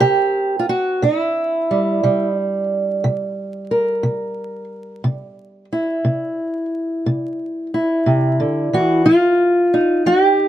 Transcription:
steel-string acoustic guitar
Already playing: C4 A#4
0.00 C3 G4
0.59 F4
0.69 F#4
1.02 C3 E4
1.71 G3
2.03 C3 G3
2.39 D4
3.04 C3
3.71 A#4
4.03 C3
5.04 C3
5.73 E4
6.05 C3
7.06 C3
7.74 E4
8.06 C3
8.40 D3
8.73 E3 F#4
9.06 F3 F4
9.74 D#4
10.06 F3 F#4
10.23 G4

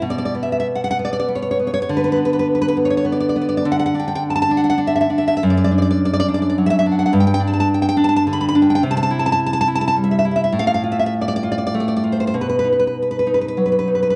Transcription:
nylon-string guitar
0.02 B2
0.10 D5
0.18 D5
0.25 D5
0.35 B3
0.43 E5
0.52 E5
0.60 E5
0.75 F#5
0.84 F#5
0.91 F#5
0.99 B3
1.05 D5
1.13 D5
1.20 D5
1.28 B3
1.35 C#5
1.42 C#5
1.51 C#5
1.59 B3
1.67 C#5
1.74 C#5
1.82 C#5
1.89 D3
1.97 B4
2.04 B4
2.12 B4
2.16 B3
2.25 B4
2.33 B4
2.39 B4
2.55 B4
2.62 B4
2.68 B4
2.77 B3
2.85 C#5
2.90 C#5
2.97 C#5
3.05 B3
3.12 D5
3.20 D5
3.29 D5
3.36 B3
3.42 D5
3.49 D5
3.57 D5
3.65 D3
3.72 F#5
3.79 F#5
3.86 F#5
3.95 D4
4.00 G5
4.08 G5
4.15 G5
4.30 A5
4.36 A5
4.42 A5
4.51 D4
4.57 F#5
4.64 F#5
4.70 F#5
4.78 D4
4.87 E5
4.96 E5
5.01 E5
5.10 D4
5.18 E5
5.28 E5
5.37 E5
5.43 F#2
5.50 D5
5.57 D5
5.64 D5
5.71 D4
5.78 D5
5.82 D5
5.91 D5
6.05 D5
6.14 D5
6.20 D5
6.28 D4
6.34 D5
6.42 D5
6.50 D5
6.58 F#3
6.66 E5
6.79 E5
6.86 D4
6.92 F#5
6.99 F#5
7.06 F#5
7.13 G2
7.20 G5
7.27 G5
7.34 G5
7.40 D4
7.47 A5
7.54 A5
7.60 A5
7.74 G5
7.82 G5
7.89 G5
7.97 D4
8.04 A5
8.09 A5
8.16 A5
8.27 D3
8.33 B5
8.41 B5
8.49 B5
8.55 D4
8.62 G5
8.70 G5
8.75 G5
8.83 C3
8.91 A5
8.97 A5
9.03 A5
9.11 E4
9.19 A5
9.26 A5
9.32 A5
9.46 A5
9.53 A5
9.61 A5
9.68 E4
9.75 A5
9.81 A5
9.88 A5
9.96 G3
10.04 E5
10.11 E5
10.19 E5
10.25 E4
10.31 E5
10.36 E5
10.44 E5
10.52 A2
10.59 F5
10.67 F5
10.74 F5
10.84 F4
10.92 E5
10.99 E5
11.06 E5
11.21 D5
11.28 D5
11.36 D5
11.43 F4
11.52 D5
11.58 D5
11.67 D5
11.74 A3
11.80 D5
11.88 D5
11.97 D5
12.04 F4
12.12 C5
12.20 C5
12.27 C5
12.34 B2
12.41 B4
12.49 B4
12.59 B4
12.64 D#4
12.72 B4
12.79 B4
12.87 B4
13.02 B4
13.11 B4
13.19 B4
13.27 D#4
13.34 B4
13.41 B4
13.48 B4
13.57 F#3
13.66 B4
13.72 B4
13.79 B4
13.88 D#4
13.95 B4
14.03 B4
14.10 B4

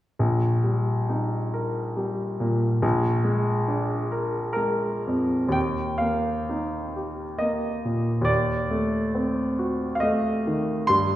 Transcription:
grand piano
0.19 A#1
0.64 G3
1.09 D#4
1.54 A#4
1.97 G3
2.40 A#2
2.82 A#1
3.24 G#3
3.68 D4
4.12 A#4
4.53 G#3 A#4
5.07 F2
5.48 D#2 G5
5.98 A#3 F5
6.50 D#4
6.96 G4
7.39 A#3 D#5
7.85 A#2
8.21 D#2 D5
8.70 A3
9.15 C4
9.59 F#4
9.95 F5
10.00 A3 D#5
10.47 D#3
10.87 G2 C6

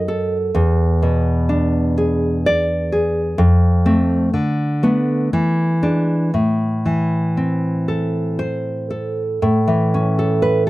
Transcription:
nylon-string guitar
Already playing: F#2 D#5
0.08 A4
0.55 E2
1.02 B2
1.49 D4
1.98 G#4
2.46 D5
2.92 G#4
3.38 F2
3.86 A3 C4
4.34 D3
4.83 A3 B3
5.33 E3
5.83 G#3 D4
6.34 A2
6.86 E3
7.37 C4
7.88 A4
8.39 C5
8.90 A4
9.42 A2
9.68 E3
9.94 C#4
10.19 A4
10.42 B4
10.67 A4

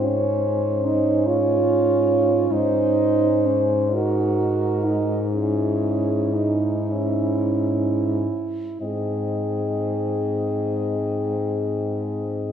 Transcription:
french horn
Already playing: G#2 C5
0.02 C#4
0.85 D#4
1.27 F4 C#5
2.51 G#2 D#4 C5
3.46 C#4
3.94 D#4 F#4 A#4
4.84 D#4
5.31 C#4 E4 G#4
6.34 D#4
6.89 C#4 E4
8.80 G#2 C4 G#4 D#5

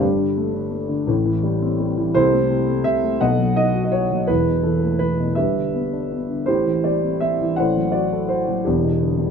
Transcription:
grand piano
0.00 G1 G2 D4 G4
0.19 D3
0.37 A3
0.54 D3
0.71 A3
0.89 D3
1.07 A1 A2
1.25 E3
1.43 G3
1.62 C4
1.80 G3
1.98 E3
2.14 C2 C3 E4 A4 C5
2.33 A3
2.50 C3
2.68 A3
2.84 C3 E5
3.03 A3
3.21 B1 B2 A4 D#5 F#5
3.39 F#3
3.56 D#4 D#5
3.75 F#4
3.84 D#5
3.92 D#4 C#5
4.11 F#3
4.27 E1 E2 E4 B4
4.48 B2
4.63 E3 A4
4.83 A3
4.99 E3 B4
5.20 B2
5.35 G1 G2 G4 B4 E5
5.57 D3
5.74 B3
5.93 D4
6.12 B3
6.30 D3
6.46 A1 A2 E4 G4 C5
6.66 E3
6.84 G3 D5
7.04 C4
7.21 G3 E5
7.41 E3
7.56 A1 A2 C5 D5 F#5
7.77 F#3
7.92 F#4 D5
8.13 A4
8.28 F#4 C5
8.48 F#3
8.65 E1 E2 B3 D4 G4
8.84 B2
9.01 D3
9.18 G3

